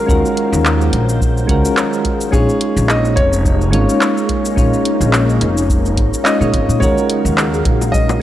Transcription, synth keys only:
0.00 0.06 G#3 medium
0.00 0.07 C#4 medium
0.00 0.08 F4 medium
0.00 0.09 F#4 medium
0.00 0.10 A#4 loud
0.06 1.45 G#3 medium
0.06 1.45 C#4 medium
0.06 1.46 F4 medium
0.06 1.46 F#4 medium
0.06 1.47 A#4 loud
1.47 2.29 G#3 loud
1.47 2.29 C#4 medium
1.47 2.30 F4 medium
1.47 2.31 F#4 medium
1.47 2.31 A#4 loud
2.31 3.69 G#3 loud
2.31 3.70 C#4 medium
2.31 3.70 D#4 medium
2.31 3.71 F4 medium
2.31 3.71 C#5 loud
3.71 4.53 G#3 loud
3.71 4.54 C#4 medium
3.71 4.54 D#4 medium
3.71 4.55 F4 medium
3.71 4.55 C#5 loud
4.55 5.93 G#3 medium
4.55 5.94 C#4 medium
4.55 5.94 D#4 medium
4.55 5.95 F4 medium
4.55 5.95 C#5 loud
6.25 6.37 G#3 medium
6.25 6.37 C#4 medium
6.25 6.37 D#4 medium
6.25 6.38 F4 medium
6.25 6.38 D#5 medium
6.40 6.78 G#3 medium
6.40 6.78 C#4 medium
6.40 6.79 D#4 medium
6.40 6.79 F4 medium
6.40 6.79 C#5 medium
6.80 8.18 G#3 medium
6.80 8.18 C#4 medium
6.80 8.19 F4 medium
6.80 8.19 F#4 medium
6.80 8.20 A#4 loud

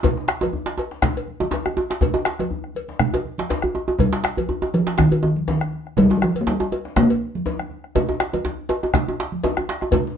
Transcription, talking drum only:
3.99 4.75 G3 medium
4.74 4.98 F3 medium
4.99 5.22 D#3 medium
5.24 5.35 D#3 medium
5.50 6.00 D#3 medium
5.98 6.16 G3 medium
6.17 6.25 G3 medium
6.24 6.42 F3 medium
6.41 6.50 A#3 medium
6.48 6.99 G3 medium
6.97 7.71 A#3 medium

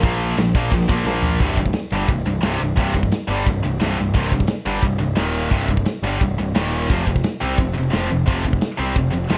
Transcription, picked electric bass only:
0.03 0.35 A#1 medium
0.37 0.53 A#1 medium
0.54 0.70 A#1 loud
0.71 0.87 A#1 medium
0.89 1.04 A#1 loud
1.04 1.37 A#1 medium
1.40 1.56 C1 medium
1.57 1.73 C1 medium
1.92 2.07 G1 medium
2.08 2.24 C1 medium
2.25 2.41 C1 medium
2.42 2.58 C1 medium
2.60 2.76 C1 medium
2.77 2.93 C1 medium
2.94 3.10 C1 medium
3.28 3.44 G1 medium
3.46 3.62 C1 medium
3.64 3.80 C1 medium
3.81 3.97 C1 medium
3.98 4.13 C1 medium
4.14 4.30 C1 medium
4.31 4.48 C1 medium
4.66 4.82 G1 medium
4.82 4.99 C1 medium
5.00 5.16 C1 medium
5.17 5.49 D#1 medium
5.51 5.67 C1 medium
5.69 5.85 C1 medium
6.02 6.19 G1 medium
6.21 6.37 C1 medium
6.38 6.54 C1 medium
6.55 6.87 D#1 medium
6.90 7.06 F1 medium
7.07 7.23 F1 medium
7.42 7.57 C2 medium
7.58 7.74 F1 medium
7.77 7.92 F1 medium
7.94 8.09 F1 medium
8.11 8.26 F1 medium
8.27 8.43 F1 medium
8.45 8.60 F1 medium
8.79 8.95 C2 medium
8.95 9.11 F1 medium
9.13 9.29 F1 medium
9.30 9.38 F1 medium

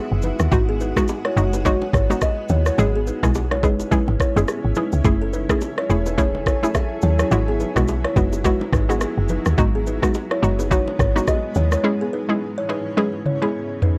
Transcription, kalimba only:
0.24 0.37 D#4 medium
0.24 0.37 B4 medium
0.69 0.78 B3 medium
0.69 0.78 G#4 medium
0.81 0.94 D#4 medium
0.81 0.93 B4 medium
1.25 1.35 E4 medium
1.25 1.34 C#5 medium
1.54 1.63 D#4 medium
1.54 1.63 B4 medium
1.66 1.79 F#4 medium
1.66 1.78 C#5 medium
1.94 2.07 E4 medium
1.94 2.07 C#5 medium
2.23 2.35 F#4 medium
2.23 2.35 D#5 medium
2.51 2.64 E4 medium
2.51 2.63 C#5 medium
2.67 2.77 E4 medium
2.67 2.76 C#5 medium
2.96 3.05 B3 medium
2.96 3.05 G#4 medium
3.07 3.20 D#4 medium
3.07 3.20 B4 medium
3.52 3.62 E4 medium
3.52 3.61 C#5 medium
3.64 3.77 D#4 medium
3.64 3.76 B4 medium
3.92 4.05 E4 medium
3.92 4.05 B4 medium
4.20 4.33 E4 medium
4.20 4.33 C#5 medium
4.37 4.46 B3 medium
4.37 4.46 G#4 medium
4.77 4.90 D#4 medium
4.77 4.90 B4 medium
5.22 5.31 C#4 medium
5.22 5.31 A4 medium
5.33 5.47 D#4 medium
5.33 5.46 B4 medium
5.78 5.88 E4 medium
5.78 5.87 C#5 medium
6.07 6.16 D#4 medium
6.07 6.16 B4 medium
6.18 6.32 E4 medium
6.18 6.31 C#5 medium
6.47 6.60 E4 medium
6.47 6.59 C#5 medium
6.75 6.88 A4 medium
6.75 6.88 E5 medium
7.03 7.16 E4 medium
7.03 7.16 C#5 medium
7.20 7.29 E4 medium
7.20 7.29 C#5 medium
7.48 7.58 B3 medium
7.48 7.57 G#4 medium
7.60 7.73 D#4 medium
7.60 7.73 B4 medium
8.05 8.14 E4 medium
8.05 8.14 C#5 medium
8.17 8.30 D#4 medium
8.17 8.29 B4 medium
8.45 8.58 E4 medium
8.45 8.57 B4 medium
8.73 8.86 D#4 medium
8.73 8.86 B4 medium
8.90 8.99 B3 medium
8.90 8.99 G#4 medium
9.30 9.43 D#4 medium
9.30 9.42 B4 medium
9.75 9.84 B3 medium
9.75 9.84 G#4 medium
9.87 10.00 D#4 medium
9.87 9.99 B4 medium
10.31 10.41 E4 medium
10.31 10.40 C#5 medium
10.60 10.69 D#4 medium
10.60 10.69 B4 medium
10.71 10.84 F#4 medium
10.71 10.84 C#5 medium
11.00 11.13 E4 medium
11.00 11.12 C#5 medium
11.28 11.41 F#4 medium
11.28 11.41 D#5 medium
11.56 11.70 E4 medium
11.56 11.69 C#5 medium
11.73 11.82 E4 medium
11.73 11.82 C#5 medium
12.01 12.11 B3 medium
12.01 12.10 G#4 medium
12.13 12.26 D#4 medium
12.13 12.26 B4 medium
12.58 12.67 E4 medium
12.58 12.67 C#5 medium
12.70 12.83 D#4 medium
12.70 12.82 B4 medium
12.98 13.11 E4 medium
12.98 13.10 B4 medium
13.26 13.39 E4 medium
13.26 13.39 C#5 medium
13.42 13.52 B3 medium
13.42 13.52 G#4 medium
13.83 13.96 D#4 medium
13.83 13.95 B4 medium

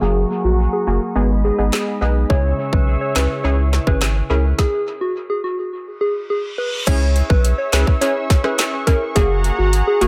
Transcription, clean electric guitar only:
0.00 1.15 F#3 medium
0.00 0.30 G#3 medium
0.00 0.33 G#4 medium
0.30 0.86 A#3 medium
0.59 1.72 G#4 medium
0.87 1.22 A#3 medium
1.16 4.66 G#3 medium
1.44 2.00 D#4 medium
1.73 2.87 G#4 medium
2.01 2.36 D#4 medium
2.30 4.59 C#3 medium
2.59 3.15 C#4 medium
2.87 3.44 G#4 medium
3.16 4.64 C#4 medium
3.44 4.01 G#4 medium
3.73 4.29 E4 medium
4.01 5.14 G#4 medium
4.30 4.64 E4 medium

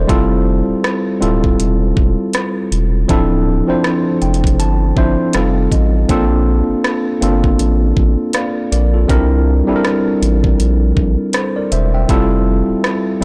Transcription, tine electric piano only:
0.00 0.10 A4 medium
0.00 0.12 A#4 medium
0.00 0.29 C5 medium
0.00 0.11 D5 medium
0.00 0.11 E5 medium
0.07 1.09 G3 loud
0.07 1.09 C4 medium
0.07 1.09 E4 medium
0.07 1.10 F4 medium
0.07 1.10 A4 loud
1.20 2.55 G3 medium
1.20 2.55 C4 medium
1.20 2.56 E4 medium
1.20 2.56 F4 medium
1.20 2.56 A4 medium
3.08 3.60 F3 loud
3.08 3.60 C4 medium
3.08 3.60 D4 medium
3.08 3.61 E4 medium
3.08 3.61 A4 loud
3.68 4.83 F3 medium
3.68 4.83 C4 medium
3.68 4.83 D4 medium
3.68 4.83 E4 medium
3.68 4.84 C5 medium
4.22 4.57 G5 medium
4.59 4.94 A5 medium
4.96 5.34 F3 medium
4.96 5.33 C4 medium
4.96 5.34 D4 medium
4.96 5.35 E4 medium
4.96 5.35 C5 medium
4.96 5.32 E5 medium
5.34 6.01 G3 medium
5.34 6.01 C4 medium
5.34 6.02 D#4 medium
5.34 6.02 F4 medium
5.34 6.02 A4 medium
5.34 5.69 F5 medium
5.72 6.07 D#5 medium
6.09 7.10 A#3 loud
6.09 7.10 C4 medium
6.09 7.10 D4 medium
6.09 7.11 F4 medium
6.09 7.11 A4 loud
7.21 8.56 A#3 medium
7.21 8.56 C4 medium
7.21 8.56 D4 medium
7.21 8.35 F4 medium
7.21 8.35 A4 medium
8.34 8.70 D5 soft
8.34 8.70 F5 medium
8.72 8.93 A#4 medium
8.72 8.93 D5 medium
8.94 9.30 F4 medium
8.94 9.29 A4 medium
9.08 9.60 G3 loud
9.08 9.60 C4 medium
9.08 9.60 D4 medium
9.08 9.61 E4 medium
9.08 9.61 A#4 loud
9.67 10.82 G3 medium
9.67 10.83 C4 medium
9.67 10.83 D4 medium
9.67 10.83 E4 medium
9.67 9.74 A4 medium
9.76 10.87 A#4 loud
11.34 11.55 A4 soft
11.34 11.55 C5 medium
11.56 11.71 A#4 medium
11.56 11.71 D5 medium
11.72 11.93 C5 medium
11.72 11.93 E5 medium
11.94 12.30 E5 medium
11.94 12.29 G5 medium
12.08 13.09 G3 loud
12.08 13.10 C4 medium
12.08 13.10 E4 medium
12.08 13.10 F4 medium
12.08 13.11 A4 loud
13.21 13.24 G3 medium
13.21 13.24 C4 medium

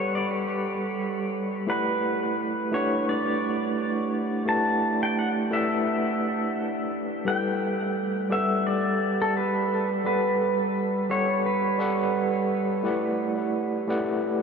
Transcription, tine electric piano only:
0.00 1.70 G3 medium
0.00 1.68 G4 medium
0.00 1.70 A4 medium
0.00 1.69 B4 medium
0.00 1.70 F#5 medium
1.67 2.69 A3 medium
1.67 2.69 E4 medium
1.67 2.69 G4 medium
1.67 2.70 B4 medium
1.67 2.70 D5 medium
1.67 2.70 F#5 medium
2.71 4.43 A3 medium
2.71 4.44 D4 medium
2.71 4.43 E4 medium
2.71 4.44 G4 medium
2.71 4.44 B4 medium
2.71 4.45 F#5 medium
4.46 5.48 A3 medium
4.46 5.48 E4 medium
4.46 5.48 G4 medium
4.46 5.48 B4 medium
4.46 5.49 D5 medium
4.46 5.49 F#5 medium
5.51 7.22 A3 medium
5.51 7.22 E4 medium
5.51 7.23 G4 medium
5.51 7.23 B4 medium
5.51 7.23 D5 medium
5.51 7.24 F#5 medium
7.25 8.27 G3 medium
7.25 8.27 G4 medium
7.25 8.28 A4 medium
7.25 8.28 B4 medium
7.25 8.28 G5 medium
8.30 10.01 G3 medium
8.30 10.02 G4 medium
8.30 10.02 A4 medium
8.30 10.02 B4 medium
8.30 10.03 F#5 medium
10.04 11.06 G3 medium
10.04 11.06 G4 medium
10.04 11.07 A4 medium
10.04 11.07 B4 medium
10.04 11.07 F#5 medium
11.10 11.77 G3 medium
11.10 11.77 G4 medium
11.10 11.77 A4 medium
11.10 11.77 B4 medium
11.10 11.77 F#5 medium
11.78 12.80 G3 medium
11.78 12.80 G4 medium
11.78 12.81 A4 medium
11.78 12.81 B4 medium
11.78 12.82 F#5 loud
12.83 13.85 A3 medium
12.83 13.85 E4 medium
12.83 13.85 G4 medium
12.83 13.86 B4 medium
12.83 13.86 D5 medium
12.83 13.86 F#5 medium
13.87 14.42 A3 medium
13.87 14.42 E4 medium
13.87 14.42 G4 medium
13.87 14.42 B4 medium
13.87 14.42 D5 medium
13.87 14.42 F#5 medium

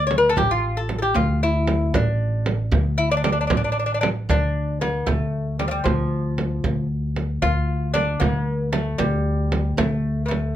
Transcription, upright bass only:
0.00 0.33 D2 loud
0.36 1.11 A1 medium
1.14 1.90 D2 loud
1.94 2.69 A1 loud
2.72 3.47 D2 loud
3.50 4.25 A1 medium
4.29 5.04 D2 loud
5.08 5.82 D2 medium
5.85 6.60 D2 loud
6.64 7.39 D2 medium
7.42 8.17 D2 loud
8.21 8.96 D2 medium
8.99 9.74 D2 loud
9.77 10.52 D2 medium

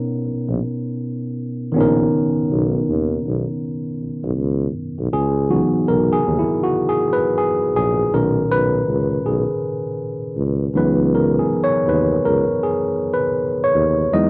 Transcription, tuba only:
0.25 0.34 A#1 soft
0.48 0.60 A#1 medium
1.75 2.06 A#1 medium
2.51 2.82 B1 medium
2.89 3.19 D#2 medium
3.27 3.45 B1 medium
4.01 4.10 B1 soft
4.24 4.39 B1 medium
4.38 4.68 C#2 medium
4.99 5.10 B1 medium
5.12 5.63 C#2 medium
5.87 6.18 B1 medium
6.25 6.44 D#2 medium
7.75 8.06 A#1 medium
8.12 8.43 B1 loud
8.50 8.80 B1 medium
8.88 9.18 C#2 medium
9.25 9.44 B1 medium
10.37 10.68 C#2 medium
10.75 11.56 C#2 loud
11.87 12.18 D#2 medium
12.25 12.44 C#2 medium
13.74 14.05 D#2 medium
14.11 14.30 E2 loud

